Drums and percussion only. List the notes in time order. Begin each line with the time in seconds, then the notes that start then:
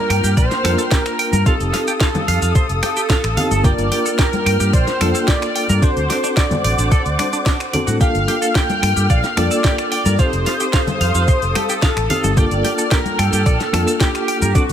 0.10 finger snap, open hi-hat
0.24 closed hi-hat, shaker
0.37 kick, closed hi-hat, shaker
0.51 snare, closed hi-hat, muted conga, shaker
0.65 finger snap, open hi-hat, high conga
0.79 closed hi-hat, shaker
0.91 kick, snare, closed hi-hat, shaker
1.06 finger snap, closed hi-hat, shaker
1.19 open hi-hat
1.33 closed hi-hat, high conga, shaker
1.46 kick, closed hi-hat, shaker
1.61 closed hi-hat, shaker
1.73 snare, open hi-hat, muted conga
1.88 closed hi-hat, shaker
2.00 kick, snare, closed hi-hat, shaker
2.15 closed hi-hat, high conga, low conga, shaker
2.28 open hi-hat
2.42 closed hi-hat, shaker
2.55 kick, closed hi-hat, shaker
2.69 closed hi-hat, shaker
2.83 finger snap, open hi-hat, muted conga, high conga
2.97 closed hi-hat, shaker
3.10 kick, snare, closed hi-hat, muted conga, shaker
3.24 finger snap, closed hi-hat, shaker
3.37 open hi-hat, muted conga, low conga
3.51 closed hi-hat, high conga, shaker
3.64 kick, closed hi-hat, shaker
3.79 closed hi-hat, shaker
3.92 open hi-hat, muted conga
4.06 closed hi-hat, shaker
4.19 kick, snare, closed hi-hat, shaker
4.33 closed hi-hat, high conga, shaker
4.46 finger snap, open hi-hat
4.60 closed hi-hat, shaker
4.73 kick, closed hi-hat, shaker
4.87 snare, closed hi-hat, muted conga, shaker
5.01 finger snap, open hi-hat, high conga
5.15 closed hi-hat, shaker
5.28 kick, snare, closed hi-hat, shaker
5.42 finger snap, closed hi-hat, shaker
5.56 open hi-hat
5.69 closed hi-hat, high conga, shaker
5.83 kick, closed hi-hat, shaker
5.97 closed hi-hat, shaker
6.10 snare, open hi-hat, muted conga
6.24 closed hi-hat, shaker
6.37 kick, snare, closed hi-hat, shaker
6.51 closed hi-hat, high conga, low conga, shaker
6.64 open hi-hat
6.79 closed hi-hat, shaker
6.92 kick, closed hi-hat, shaker
7.06 closed hi-hat, shaker
7.19 finger snap, open hi-hat, muted conga, high conga
7.33 closed hi-hat, shaker
7.46 kick, snare, closed hi-hat, muted conga, shaker
7.60 finger snap, closed hi-hat, shaker
7.73 open hi-hat, muted conga, low conga
7.88 closed hi-hat, high conga, shaker
8.01 kick, closed hi-hat, shaker
8.15 closed hi-hat, shaker
8.28 open hi-hat, muted conga
8.42 closed hi-hat, shaker
8.55 kick, snare, closed hi-hat, shaker
8.70 closed hi-hat, high conga, shaker
8.83 finger snap, open hi-hat
8.97 closed hi-hat, shaker
9.10 kick, closed hi-hat, shaker
9.23 snare, closed hi-hat, muted conga, shaker
9.37 finger snap, open hi-hat, high conga
9.51 closed hi-hat, shaker
9.64 kick, snare, closed hi-hat, shaker
9.78 finger snap, closed hi-hat, shaker
9.92 open hi-hat
10.06 closed hi-hat, high conga, shaker
10.19 kick, closed hi-hat, shaker
10.33 closed hi-hat, shaker
10.46 snare, open hi-hat, muted conga
10.60 closed hi-hat, shaker
10.73 kick, snare, closed hi-hat, shaker
10.87 closed hi-hat, high conga, low conga, shaker
11.01 open hi-hat
11.15 closed hi-hat, shaker
11.28 kick, closed hi-hat, shaker
11.42 closed hi-hat, shaker
11.55 finger snap, open hi-hat, muted conga, high conga
11.69 closed hi-hat, shaker
11.82 kick, snare, closed hi-hat, muted conga, shaker
11.97 finger snap, closed hi-hat, shaker
12.10 open hi-hat, muted conga, low conga
12.24 closed hi-hat, high conga, shaker
12.37 kick, closed hi-hat, shaker
12.51 closed hi-hat, shaker
12.65 open hi-hat, muted conga
12.79 closed hi-hat, shaker
12.91 kick, snare, closed hi-hat, shaker
13.05 closed hi-hat, high conga, shaker
13.19 finger snap, open hi-hat
13.33 closed hi-hat, shaker
13.46 kick, closed hi-hat, shaker
13.60 snare, closed hi-hat, muted conga, shaker
13.73 finger snap, open hi-hat, high conga
13.88 closed hi-hat, shaker
14.00 kick, snare, closed hi-hat, shaker
14.15 finger snap, closed hi-hat, shaker
14.28 open hi-hat
14.42 closed hi-hat, high conga, shaker
14.55 kick, closed hi-hat, shaker
14.69 closed hi-hat, shaker